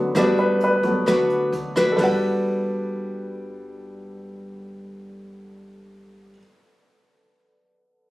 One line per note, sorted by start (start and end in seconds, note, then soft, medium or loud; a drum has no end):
0.00 0.13 D3 medium
0.00 0.84 F#3 soft
0.00 0.17 A3 soft
0.00 0.17 B3 soft
0.00 0.12 D4 medium
0.00 0.12 F#4 medium
0.00 0.12 B4 medium
0.15 0.37 G1 medium
0.15 1.05 G3 medium
0.15 0.83 A3 soft
0.15 0.83 B3 soft
0.15 0.77 D4 medium
0.15 0.77 F#4 medium
0.15 0.78 B4 medium
0.15 0.39 D5 medium
0.15 kick medium
0.15 cross-stick medium
0.15 closed hi-hat soft
0.38 0.61 B4 medium
0.38 closed hi-hat soft
0.60 1.27 B4 medium
0.60 closed hi-hat soft
0.83 1.05 D2 medium
0.83 1.04 F#3 soft
0.83 1.05 A3 soft
0.83 1.05 B3 soft
0.83 kick soft
0.83 closed hi-hat soft
1.06 1.49 D2 medium
1.06 1.96 D3 medium
1.06 1.52 D4 medium
1.06 1.52 F#4 medium
1.06 1.53 B4 medium
1.06 kick medium
1.06 cross-stick medium
1.06 closed hi-hat soft
1.30 closed hi-hat soft
1.52 1.74 D2 medium
1.52 closed hi-hat soft
1.75 1.98 D4 medium
1.75 2.00 F#4 medium
1.75 2.02 B4 medium
1.75 kick soft
1.75 cross-stick medium
1.75 closed hi-hat soft
1.92 6.28 A4 medium
1.96 6.34 G1 medium
1.96 6.36 G3 medium
1.96 6.39 D4 medium
1.96 6.32 B4 medium
1.96 6.36 D5 medium
1.96 kick medium
1.96 floor tom medium
1.96 open hi-hat medium
2.01 6.41 F#4 medium
2.01 6.43 B4 medium
2.01 6.39 F#5 medium